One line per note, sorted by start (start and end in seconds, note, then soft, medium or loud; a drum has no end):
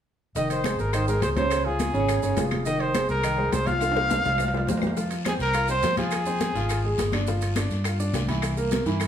0.35 0.76 F1 medium
0.35 0.60 D#3 medium
0.35 0.60 D#4 medium
0.35 0.49 D#5 medium
0.35 0.60 D#5 medium
0.35 high bongo medium
0.35 high conga soft
0.35 maracas medium
0.50 0.77 C5 medium
0.50 high bongo soft
0.50 high conga soft
0.50 high timbale medium
0.50 maracas medium
0.64 0.88 G#3 medium
0.64 0.88 G#4 medium
0.64 0.89 C5 medium
0.64 high bongo medium
0.64 high conga medium
0.64 high timbale medium
0.64 claves medium
0.64 maracas medium
0.79 1.19 G#1 medium
0.79 0.95 A#4 medium
0.79 high bongo soft
0.79 high conga soft
0.79 maracas soft
0.93 1.05 D#3 medium
0.93 1.06 D#4 medium
0.93 1.08 C5 medium
0.93 1.06 D#5 medium
0.93 high bongo medium
0.93 high conga soft
0.93 high timbale medium
0.93 claves medium
0.93 maracas medium
1.08 1.31 G#3 medium
1.08 1.32 G#4 medium
1.08 1.21 A#4 medium
1.08 1.32 C5 medium
1.08 high conga soft
1.08 maracas medium
1.22 1.89 C#2 medium
1.22 1.29 C5 medium
1.22 high bongo medium
1.22 low bongo medium
1.22 high conga medium
1.22 high timbale medium
1.22 maracas medium
1.36 1.60 C#3 medium
1.36 1.60 C#4 medium
1.36 1.66 C5 medium
1.36 1.61 C#5 medium
1.36 high conga medium
1.36 high timbale medium
1.36 maracas soft
1.50 high bongo medium
1.50 high conga soft
1.50 high timbale medium
1.50 claves medium
1.50 maracas medium
1.65 1.89 F3 medium
1.65 1.89 F4 medium
1.65 2.52 G#4 medium
1.65 1.90 G#4 medium
1.65 high conga soft
1.80 high bongo medium
1.80 high conga medium
1.80 high timbale medium
1.80 maracas medium
1.94 2.21 G#1 medium
1.94 2.17 C#3 medium
1.94 2.18 C#4 medium
1.94 2.18 C#5 medium
1.94 high bongo soft
1.94 high conga soft
1.94 maracas soft
2.09 high bongo medium
2.09 high conga soft
2.09 high timbale medium
2.09 claves medium
2.09 maracas medium
2.22 2.36 G1 medium
2.22 2.35 C#3 medium
2.22 2.35 C#4 medium
2.22 2.35 C#5 medium
2.22 high bongo soft
2.22 high conga soft
2.22 maracas medium
2.37 3.04 F1 medium
2.37 2.61 F3 medium
2.37 2.61 F4 medium
2.37 2.61 G#4 medium
2.37 high bongo medium
2.37 low bongo medium
2.37 high conga medium
2.37 high timbale medium
2.37 low timbale medium
2.37 maracas medium
2.51 high bongo soft
2.51 high conga medium
2.51 high timbale medium
2.51 claves medium
2.51 maracas soft
2.66 2.90 D#3 medium
2.66 2.90 D#4 medium
2.66 2.82 D#5 medium
2.66 2.90 D#5 medium
2.66 high bongo medium
2.66 high conga soft
2.66 maracas medium
2.80 3.09 C5 medium
2.80 high bongo soft
2.80 high conga soft
2.80 high timbale medium
2.94 3.18 G#3 medium
2.94 3.19 G#4 medium
2.94 3.19 C5 medium
2.94 high bongo medium
2.94 high conga medium
2.94 high timbale medium
2.94 claves medium
2.94 maracas medium
3.09 3.49 C2 medium
3.09 3.54 A#4 medium
3.09 high bongo soft
3.09 high conga soft
3.09 maracas soft
3.23 3.36 D#3 medium
3.23 3.36 D#4 medium
3.23 3.36 D#5 medium
3.23 high bongo medium
3.23 high conga soft
3.23 high timbale medium
3.23 claves medium
3.23 maracas medium
3.38 3.62 G#3 medium
3.38 3.62 G#4 medium
3.38 3.62 C5 medium
3.38 high bongo soft
3.38 high conga soft
3.52 4.19 C2 medium
3.52 3.69 C5 medium
3.52 high bongo medium
3.52 low bongo medium
3.52 high conga medium
3.52 high timbale medium
3.52 maracas medium
3.66 3.91 F3 medium
3.66 3.91 F4 medium
3.66 4.82 F5 loud
3.66 3.91 F5 medium
3.66 high conga medium
3.66 high timbale medium
3.66 maracas soft
3.81 high bongo medium
3.81 high conga soft
3.81 high timbale medium
3.81 claves medium
3.81 maracas medium
3.92 4.19 A#3 medium
3.92 4.19 A#4 medium
3.92 high timbale medium
3.96 4.20 C5 medium
3.96 high bongo loud
3.96 high conga soft
4.10 high bongo medium
4.10 high conga medium
4.10 high timbale medium
4.10 maracas medium
4.25 4.65 C2 medium
4.25 4.48 F3 medium
4.25 4.49 F4 medium
4.25 4.49 F5 medium
4.25 low bongo medium
4.25 high conga soft
4.25 maracas soft
4.29 low timbale medium
4.38 low bongo medium
4.38 high conga soft
4.38 low timbale loud
4.38 claves medium
4.38 maracas medium
4.48 low timbale medium
4.54 4.65 F3 medium
4.54 4.66 F4 medium
4.54 4.66 F5 medium
4.54 low bongo medium
4.54 high conga soft
4.54 low timbale medium
4.67 5.35 F2 medium
4.67 4.92 A#3 medium
4.67 4.92 A#4 medium
4.67 4.92 C5 medium
4.67 low bongo loud
4.67 high conga medium
4.67 low timbale medium
4.67 maracas medium
4.77 low timbale medium
4.82 low bongo medium
4.82 high conga medium
4.82 claves medium
4.82 maracas soft
4.87 low timbale medium
4.96 5.20 F3 medium
4.96 5.20 F4 medium
4.96 high bongo medium
4.96 high conga soft
4.96 long guiro medium
4.96 maracas medium
5.11 high bongo soft
5.11 high conga soft
5.11 high timbale medium
5.11 maracas medium
5.25 5.49 C4 medium
5.25 5.34 G#4 medium
5.25 5.50 C5 medium
5.25 high bongo medium
5.25 high conga medium
5.25 high timbale medium
5.25 short guiro medium
5.25 claves medium
5.25 maracas medium
5.39 5.80 C2 medium
5.39 5.67 A#4 medium
5.39 high bongo soft
5.39 high conga soft
5.39 short guiro medium
5.39 maracas soft
5.54 5.66 F4 medium
5.54 5.66 F5 medium
5.54 high bongo medium
5.54 high conga soft
5.54 high timbale medium
5.54 long guiro medium
5.54 claves medium
5.54 maracas medium
5.68 5.92 C4 medium
5.68 5.93 C5 medium
5.68 5.96 C5 loud
5.68 high bongo soft
5.68 high conga soft
5.68 maracas medium
5.83 6.50 F2 medium
5.83 high bongo medium
5.83 low bongo medium
5.83 high conga medium
5.83 high timbale medium
5.83 short guiro medium
5.83 maracas medium
5.97 6.21 F3 medium
5.97 6.21 F4 medium
5.97 7.09 G#4 medium
5.97 high conga medium
5.97 high timbale medium
5.97 short guiro medium
5.97 maracas soft
6.11 high bongo medium
6.11 high conga soft
6.11 high timbale medium
6.11 long guiro medium
6.11 claves medium
6.11 maracas medium
6.26 6.50 C4 medium
6.26 6.50 C5 medium
6.26 high conga soft
6.26 maracas medium
6.41 high bongo medium
6.41 high conga medium
6.41 high timbale medium
6.41 short guiro medium
6.41 maracas medium
6.55 6.95 G#1 medium
6.55 6.79 F3 medium
6.55 6.79 F4 medium
6.55 high bongo soft
6.55 high conga soft
6.55 short guiro medium
6.55 maracas soft
6.69 high bongo medium
6.69 high conga soft
6.69 high timbale medium
6.69 long guiro medium
6.69 claves medium
6.69 maracas medium
6.84 7.08 G#3 medium
6.84 7.08 G#4 medium
6.84 high bongo soft
6.84 high conga soft
6.98 7.65 G1 medium
6.98 high bongo medium
6.98 low bongo medium
6.98 high conga medium
6.98 high timbale medium
6.98 short guiro medium
6.98 maracas medium
7.12 7.25 D4 medium
7.12 7.25 D5 medium
7.12 high bongo soft
7.12 high conga medium
7.12 high timbale medium
7.12 short guiro medium
7.12 claves medium
7.12 maracas soft
7.27 7.51 F3 medium
7.27 7.51 F4 medium
7.27 high bongo medium
7.27 high conga soft
7.27 long guiro medium
7.27 maracas medium
7.41 high bongo soft
7.41 high conga soft
7.41 high timbale medium
7.41 maracas medium
7.56 7.80 D4 medium
7.56 7.81 D5 medium
7.56 high bongo medium
7.56 high conga medium
7.56 high timbale medium
7.56 short guiro medium
7.56 claves medium
7.56 maracas medium
7.70 8.10 G2 medium
7.70 high bongo soft
7.70 high conga soft
7.70 short guiro medium
7.70 maracas soft
7.84 7.97 F4 medium
7.84 7.97 F5 medium
7.84 high bongo medium
7.84 high conga soft
7.84 high timbale medium
7.84 long guiro medium
7.84 claves medium
7.84 maracas medium
8.00 8.23 D4 medium
8.00 8.23 D5 medium
8.00 high bongo soft
8.00 high conga soft
8.00 maracas medium
8.14 8.80 C2 medium
8.14 high bongo medium
8.14 low bongo medium
8.14 high conga medium
8.14 high timbale medium
8.14 low timbale medium
8.14 short guiro medium
8.14 maracas medium
8.28 8.52 E3 medium
8.28 8.52 E4 medium
8.28 high conga medium
8.28 high timbale medium
8.28 short guiro medium
8.28 maracas soft
8.42 high bongo medium
8.42 high conga soft
8.42 high timbale medium
8.42 long guiro medium
8.42 claves medium
8.42 maracas medium
8.57 8.81 A#3 medium
8.57 8.81 A#4 medium
8.57 high conga soft
8.57 maracas medium
8.71 high bongo medium
8.71 high conga medium
8.71 high timbale medium
8.71 short guiro medium
8.71 maracas medium
8.85 9.07 G2 medium
8.85 9.07 E3 medium
8.85 9.07 E4 medium
8.85 high bongo soft
8.85 high conga soft
8.85 short guiro medium
8.85 maracas soft
9.00 high bongo medium
9.00 high conga soft
9.00 high timbale medium
9.00 long guiro medium
9.00 claves medium
9.00 maracas medium